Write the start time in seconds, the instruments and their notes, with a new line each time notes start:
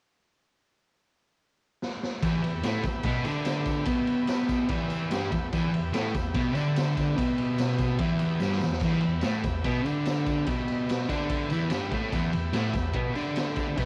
1.82 snare
2.03 snare
2.22 distorted electric guitar E2 E3, transistor combo organ G4 B4 E5, kick, ride, tambourine
2.43 distorted electric guitar E2, ride
2.63 distorted electric guitar A2 A3, snare, ride, tambourine
2.83 distorted electric guitar E2, kick, ride, tambourine
3.03 distorted electric guitar B2 B3, kick, ride
3.25 distorted electric guitar D3 D4, ride, tambourine
3.45 snare, ride, tambourine
3.65 kick, ride, tambourine
3.85 distorted electric guitar B2 B3, kick, ride, tambourine
4.07 ride
4.27 snare, ride, tambourine
4.49 kick, ride, tambourine
4.69 distorted electric guitar E2 E3, kick, ride
4.90 ride, tambourine
5.11 distorted electric guitar G2 G3, snare, ride, tambourine
5.31 distorted electric guitar E2, kick, ride, tambourine
5.52 distorted electric guitar E2 E3, transistor combo organ G4 B4 E5, kick, ride, tambourine
5.72 distorted electric guitar E2, ride
5.92 distorted electric guitar A2 A3, snare, ride, tambourine
6.14 distorted electric guitar E2, kick, ride, tambourine
6.34 distorted electric guitar B2 B3, kick, ride
6.55 distorted electric guitar D3 D4, ride, tambourine
6.76 snare, ride, tambourine
6.97 kick, ride, tambourine
7.17 distorted electric guitar B2 B3, kick, ride, tambourine
7.38 ride
7.58 snare, ride, tambourine
7.78 kick, ride, tambourine
7.99 distorted electric guitar E2 E3, kick, ride
8.19 ride, tambourine
8.40 distorted electric guitar G2 G3, snare, tambourine
8.52 snare
8.61 distorted electric guitar E2, snare, tambourine
8.72 snare
8.80 distorted electric guitar E2, kick, crash, tambourine
8.84 distorted electric guitar E3, transistor combo organ G4 B4 E5
9.01 distorted electric guitar E2, ride
9.21 distorted electric guitar A2 A3, snare, ride, tambourine
9.44 distorted electric guitar E2, kick, ride, tambourine
9.64 distorted electric guitar B2 B3, kick, ride
9.85 distorted electric guitar D3 D4, ride, tambourine
10.05 snare, ride, tambourine
10.26 kick, ride, tambourine
10.46 distorted electric guitar B2 B3, kick, ride, tambourine
10.68 ride
10.89 snare, ride, tambourine
11.09 distorted electric guitar D3 D4, kick, ride, tambourine
11.29 kick, ride
11.50 distorted electric guitar E2 E3, ride, tambourine
11.70 distorted electric guitar G2 G3, snare, ride, tambourine
11.91 distorted electric guitar A2 A3, kick, ride
12.11 distorted electric guitar E2 E3, transistor combo organ G4 B4 E5, kick, ride, tambourine
12.33 distorted electric guitar E2, ride
12.53 distorted electric guitar A2 A3, snare, ride, tambourine
12.73 distorted electric guitar E2, kick, ride, tambourine
12.93 distorted electric guitar B2 B3, kick, ride
13.15 distorted electric guitar D3 D4, ride, tambourine
13.36 snare, ride, tambourine
13.56 kick, ride, tambourine
13.78 distorted electric guitar B2 B3, kick, ride, tambourine